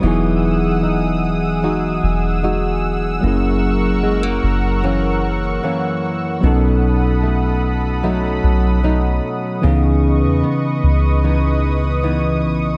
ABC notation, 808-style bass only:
X:1
M:4/4
L:1/16
Q:1/4=75
K:C#m
V:1 name="808-style bass" clef=bass
E,,,8- E,,,2 E,,,6 | F,,,6 F,,,6 z4 | B,,,8- B,,,2 B,,,4 z2 | C,,3 E,, z2 C,,8 B,,,2 |]